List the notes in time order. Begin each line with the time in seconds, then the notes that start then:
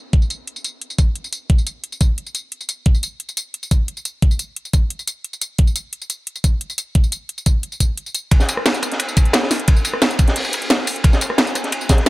0.13 kick, closed hi-hat
0.22 tambourine
0.30 closed hi-hat, tambourine
0.47 closed hi-hat
0.56 tambourine
0.64 closed hi-hat, tambourine
0.81 closed hi-hat
0.90 tambourine
0.98 kick, closed hi-hat, tambourine
1.16 closed hi-hat
1.24 tambourine
1.33 closed hi-hat, tambourine
1.50 kick, closed hi-hat
1.58 tambourine
1.67 closed hi-hat, tambourine
1.84 closed hi-hat
1.92 tambourine
2.01 kick, closed hi-hat, tambourine
2.18 closed hi-hat
2.26 tambourine
2.35 closed hi-hat, tambourine
2.52 closed hi-hat
2.61 tambourine
2.69 closed hi-hat, tambourine
2.86 kick, closed hi-hat
2.95 tambourine
3.03 closed hi-hat, tambourine
3.20 closed hi-hat
3.29 tambourine
3.37 closed hi-hat, tambourine
3.54 closed hi-hat
3.63 tambourine
3.71 kick, closed hi-hat, tambourine
3.88 closed hi-hat
3.97 tambourine
4.05 closed hi-hat, tambourine
4.22 kick, closed hi-hat
4.31 tambourine
4.39 closed hi-hat, tambourine
4.56 closed hi-hat
4.65 tambourine
4.73 kick, closed hi-hat, tambourine
4.90 closed hi-hat
4.99 tambourine
5.07 closed hi-hat, tambourine
5.24 closed hi-hat
5.33 tambourine
5.41 closed hi-hat, tambourine
5.58 kick, closed hi-hat
5.67 tambourine
5.76 closed hi-hat, tambourine
5.93 closed hi-hat
6.02 tambourine
6.10 closed hi-hat, tambourine
6.27 closed hi-hat
6.36 tambourine
6.44 kick, closed hi-hat, tambourine
6.61 closed hi-hat
6.70 tambourine
6.78 closed hi-hat, tambourine
6.95 kick, closed hi-hat
7.04 tambourine
7.12 closed hi-hat, tambourine
7.29 closed hi-hat
7.38 tambourine
7.46 kick, closed hi-hat, tambourine
7.63 closed hi-hat
7.72 tambourine
7.80 kick, closed hi-hat, tambourine
7.97 closed hi-hat
8.06 tambourine
8.15 closed hi-hat, tambourine
8.31 kick, closed hi-hat, ride
8.40 snare, tambourine
8.49 closed hi-hat, ride, tambourine
8.57 cross-stick
8.66 snare, closed hi-hat, ride
8.74 snare, closed hi-hat, tambourine
8.82 cross-stick, closed hi-hat, ride, tambourine
8.92 snare, closed hi-hat
8.99 closed hi-hat, ride
9.08 tambourine
9.17 kick, closed hi-hat, ride, tambourine
9.25 closed hi-hat
9.33 snare, closed hi-hat, ride
9.43 snare
9.50 snare, open hi-hat, ride, tambourine
9.60 closed hi-hat
9.68 kick, closed hi-hat, ride
9.77 tambourine
9.85 closed hi-hat, ride, tambourine
9.94 cross-stick
10.02 snare, closed hi-hat, ride
10.11 closed hi-hat, tambourine
10.19 kick, closed hi-hat, ride, tambourine
10.28 snare, closed hi-hat
10.36 closed hi-hat, open hi-hat
10.45 ride, tambourine
10.53 closed hi-hat, ride, tambourine
10.62 closed hi-hat
10.70 snare, closed hi-hat, ride
10.87 open hi-hat, ride, tambourine
10.96 closed hi-hat
11.04 kick, closed hi-hat, ride
11.13 snare, tambourine
11.21 closed hi-hat, ride, tambourine
11.30 cross-stick
11.38 snare, closed hi-hat, ride
11.47 snare, closed hi-hat, tambourine
11.55 cross-stick, closed hi-hat, ride, tambourine
11.64 snare, closed hi-hat
11.72 closed hi-hat, ride
11.81 tambourine
11.89 kick, snare, closed hi-hat, ride, tambourine
11.98 snare, closed hi-hat